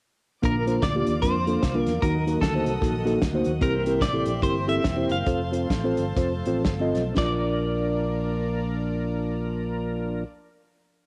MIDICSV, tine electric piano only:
0, 0, Header, 1, 2, 480
1, 0, Start_track
1, 0, Key_signature, -2, "major"
1, 0, Tempo, 397878
1, 528, Time_signature, 4, 2, 24, 8
1, 4850, Tempo, 422238
1, 6770, Tempo, 472441
1, 7730, Tempo, 512821
1, 8210, Tempo, 527704
1, 11756, End_track
2, 0, Start_track
2, 0, Title_t, "Tine electric piano"
2, 0, Program_c, 0, 4
2, 510, Note_on_c, 0, 58, 68
2, 517, Note_on_c, 0, 62, 61
2, 518, Note_on_c, 0, 65, 59
2, 523, Note_on_c, 0, 46, 57
2, 525, Note_on_c, 0, 70, 71
2, 668, Note_off_c, 0, 58, 0
2, 671, Note_off_c, 0, 62, 0
2, 671, Note_off_c, 0, 65, 0
2, 675, Note_off_c, 0, 70, 0
2, 802, Note_on_c, 0, 58, 65
2, 806, Note_on_c, 0, 62, 56
2, 808, Note_on_c, 0, 65, 59
2, 813, Note_on_c, 0, 72, 70
2, 956, Note_off_c, 0, 58, 0
2, 959, Note_off_c, 0, 62, 0
2, 960, Note_off_c, 0, 65, 0
2, 962, Note_off_c, 0, 72, 0
2, 1148, Note_on_c, 0, 62, 57
2, 1150, Note_on_c, 0, 58, 63
2, 1154, Note_on_c, 0, 67, 68
2, 1160, Note_on_c, 0, 65, 58
2, 1244, Note_off_c, 0, 46, 0
2, 1346, Note_off_c, 0, 62, 0
2, 1347, Note_off_c, 0, 58, 0
2, 1349, Note_off_c, 0, 67, 0
2, 1352, Note_off_c, 0, 65, 0
2, 1483, Note_on_c, 0, 58, 59
2, 1486, Note_on_c, 0, 62, 56
2, 1487, Note_on_c, 0, 65, 53
2, 1489, Note_on_c, 0, 70, 65
2, 1633, Note_off_c, 0, 58, 0
2, 1635, Note_off_c, 0, 62, 0
2, 1635, Note_off_c, 0, 65, 0
2, 1636, Note_off_c, 0, 70, 0
2, 1776, Note_on_c, 0, 65, 64
2, 1778, Note_on_c, 0, 58, 68
2, 1780, Note_on_c, 0, 62, 65
2, 1780, Note_on_c, 0, 69, 74
2, 1923, Note_off_c, 0, 65, 0
2, 1924, Note_off_c, 0, 58, 0
2, 1925, Note_off_c, 0, 62, 0
2, 1925, Note_off_c, 0, 69, 0
2, 2107, Note_on_c, 0, 58, 70
2, 2109, Note_on_c, 0, 62, 65
2, 2111, Note_on_c, 0, 65, 65
2, 2119, Note_on_c, 0, 70, 77
2, 2305, Note_off_c, 0, 58, 0
2, 2306, Note_off_c, 0, 62, 0
2, 2307, Note_off_c, 0, 65, 0
2, 2311, Note_off_c, 0, 70, 0
2, 2439, Note_on_c, 0, 58, 63
2, 2447, Note_on_c, 0, 51, 54
2, 2447, Note_on_c, 0, 63, 59
2, 2450, Note_on_c, 0, 66, 60
2, 2451, Note_on_c, 0, 70, 73
2, 2591, Note_off_c, 0, 58, 0
2, 2596, Note_off_c, 0, 63, 0
2, 2597, Note_off_c, 0, 66, 0
2, 2597, Note_off_c, 0, 70, 0
2, 2733, Note_on_c, 0, 58, 64
2, 2739, Note_on_c, 0, 63, 60
2, 2739, Note_on_c, 0, 66, 63
2, 2749, Note_on_c, 0, 70, 74
2, 2882, Note_off_c, 0, 58, 0
2, 2885, Note_off_c, 0, 63, 0
2, 2885, Note_off_c, 0, 66, 0
2, 2890, Note_off_c, 0, 70, 0
2, 3068, Note_on_c, 0, 58, 61
2, 3074, Note_on_c, 0, 63, 58
2, 3075, Note_on_c, 0, 66, 58
2, 3081, Note_on_c, 0, 72, 69
2, 3167, Note_off_c, 0, 51, 0
2, 3266, Note_off_c, 0, 58, 0
2, 3269, Note_off_c, 0, 63, 0
2, 3269, Note_off_c, 0, 66, 0
2, 3272, Note_off_c, 0, 72, 0
2, 3391, Note_on_c, 0, 58, 58
2, 3398, Note_on_c, 0, 66, 57
2, 3399, Note_on_c, 0, 69, 66
2, 3402, Note_on_c, 0, 63, 54
2, 3548, Note_off_c, 0, 58, 0
2, 3552, Note_off_c, 0, 66, 0
2, 3552, Note_off_c, 0, 69, 0
2, 3553, Note_off_c, 0, 63, 0
2, 3686, Note_on_c, 0, 63, 77
2, 3690, Note_on_c, 0, 58, 86
2, 3690, Note_on_c, 0, 66, 76
2, 3696, Note_on_c, 0, 69, 96
2, 3839, Note_off_c, 0, 63, 0
2, 3841, Note_off_c, 0, 58, 0
2, 3841, Note_off_c, 0, 66, 0
2, 3844, Note_off_c, 0, 69, 0
2, 4029, Note_on_c, 0, 63, 66
2, 4032, Note_on_c, 0, 58, 73
2, 4038, Note_on_c, 0, 66, 68
2, 4041, Note_on_c, 0, 72, 81
2, 4227, Note_off_c, 0, 63, 0
2, 4229, Note_off_c, 0, 58, 0
2, 4232, Note_off_c, 0, 66, 0
2, 4233, Note_off_c, 0, 72, 0
2, 4355, Note_on_c, 0, 60, 65
2, 4358, Note_on_c, 0, 64, 60
2, 4360, Note_on_c, 0, 67, 60
2, 4362, Note_on_c, 0, 48, 55
2, 4369, Note_on_c, 0, 70, 70
2, 4510, Note_off_c, 0, 60, 0
2, 4512, Note_off_c, 0, 64, 0
2, 4513, Note_off_c, 0, 67, 0
2, 4518, Note_off_c, 0, 70, 0
2, 4656, Note_on_c, 0, 60, 67
2, 4663, Note_on_c, 0, 64, 57
2, 4664, Note_on_c, 0, 67, 61
2, 4669, Note_on_c, 0, 70, 73
2, 4806, Note_off_c, 0, 60, 0
2, 4809, Note_off_c, 0, 64, 0
2, 4810, Note_off_c, 0, 67, 0
2, 4812, Note_off_c, 0, 70, 0
2, 4971, Note_on_c, 0, 60, 61
2, 4979, Note_on_c, 0, 64, 59
2, 4984, Note_on_c, 0, 67, 56
2, 4987, Note_on_c, 0, 69, 68
2, 5079, Note_off_c, 0, 48, 0
2, 5169, Note_off_c, 0, 60, 0
2, 5173, Note_off_c, 0, 64, 0
2, 5175, Note_off_c, 0, 67, 0
2, 5177, Note_off_c, 0, 69, 0
2, 5306, Note_on_c, 0, 60, 59
2, 5307, Note_on_c, 0, 64, 54
2, 5312, Note_on_c, 0, 67, 56
2, 5316, Note_on_c, 0, 70, 62
2, 5454, Note_off_c, 0, 60, 0
2, 5455, Note_off_c, 0, 64, 0
2, 5457, Note_off_c, 0, 67, 0
2, 5459, Note_off_c, 0, 70, 0
2, 5594, Note_on_c, 0, 60, 69
2, 5594, Note_on_c, 0, 64, 64
2, 5598, Note_on_c, 0, 67, 65
2, 5606, Note_on_c, 0, 69, 73
2, 5740, Note_off_c, 0, 60, 0
2, 5740, Note_off_c, 0, 64, 0
2, 5742, Note_off_c, 0, 67, 0
2, 5746, Note_off_c, 0, 69, 0
2, 5921, Note_on_c, 0, 64, 58
2, 5922, Note_on_c, 0, 60, 58
2, 5928, Note_on_c, 0, 67, 56
2, 5928, Note_on_c, 0, 72, 68
2, 6123, Note_off_c, 0, 64, 0
2, 6124, Note_off_c, 0, 60, 0
2, 6126, Note_off_c, 0, 67, 0
2, 6127, Note_off_c, 0, 72, 0
2, 6263, Note_on_c, 0, 60, 64
2, 6266, Note_on_c, 0, 65, 59
2, 6266, Note_on_c, 0, 69, 61
2, 6270, Note_on_c, 0, 72, 73
2, 6419, Note_off_c, 0, 60, 0
2, 6421, Note_off_c, 0, 65, 0
2, 6421, Note_off_c, 0, 69, 0
2, 6423, Note_off_c, 0, 72, 0
2, 6552, Note_on_c, 0, 60, 62
2, 6556, Note_on_c, 0, 65, 61
2, 6557, Note_on_c, 0, 69, 61
2, 6561, Note_on_c, 0, 72, 78
2, 6716, Note_off_c, 0, 60, 0
2, 6718, Note_off_c, 0, 65, 0
2, 6719, Note_off_c, 0, 69, 0
2, 6721, Note_off_c, 0, 72, 0
2, 6901, Note_on_c, 0, 60, 75
2, 6907, Note_on_c, 0, 69, 67
2, 6909, Note_on_c, 0, 65, 69
2, 6913, Note_on_c, 0, 72, 82
2, 7097, Note_off_c, 0, 60, 0
2, 7100, Note_off_c, 0, 69, 0
2, 7101, Note_off_c, 0, 65, 0
2, 7103, Note_off_c, 0, 72, 0
2, 7236, Note_on_c, 0, 60, 66
2, 7237, Note_on_c, 0, 65, 62
2, 7238, Note_on_c, 0, 69, 65
2, 7242, Note_on_c, 0, 72, 76
2, 7387, Note_off_c, 0, 60, 0
2, 7388, Note_off_c, 0, 65, 0
2, 7388, Note_off_c, 0, 69, 0
2, 7390, Note_off_c, 0, 72, 0
2, 7540, Note_on_c, 0, 60, 82
2, 7543, Note_on_c, 0, 65, 74
2, 7546, Note_on_c, 0, 69, 74
2, 7547, Note_on_c, 0, 72, 90
2, 7690, Note_off_c, 0, 60, 0
2, 7691, Note_off_c, 0, 65, 0
2, 7693, Note_off_c, 0, 69, 0
2, 7693, Note_off_c, 0, 72, 0
2, 7868, Note_on_c, 0, 60, 70
2, 7875, Note_on_c, 0, 65, 65
2, 7878, Note_on_c, 0, 69, 68
2, 7879, Note_on_c, 0, 75, 83
2, 8067, Note_off_c, 0, 60, 0
2, 8070, Note_off_c, 0, 65, 0
2, 8072, Note_off_c, 0, 69, 0
2, 8072, Note_off_c, 0, 75, 0
2, 8195, Note_on_c, 0, 62, 69
2, 8206, Note_on_c, 0, 65, 64
2, 8214, Note_on_c, 0, 34, 71
2, 8219, Note_on_c, 0, 70, 65
2, 8230, Note_on_c, 0, 74, 74
2, 10980, Note_off_c, 0, 62, 0
2, 10990, Note_off_c, 0, 65, 0
2, 10998, Note_off_c, 0, 34, 0
2, 11003, Note_off_c, 0, 70, 0
2, 11014, Note_off_c, 0, 74, 0
2, 11756, End_track
0, 0, End_of_file